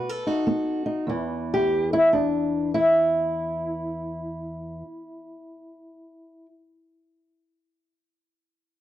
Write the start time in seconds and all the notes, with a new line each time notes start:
Already playing: B2 B4
0.09 A4
0.27 D#4 F#4
0.47 B3
0.86 D#4
1.07 E2 E3
1.54 G4
1.93 E4
2.13 D4
2.74 E4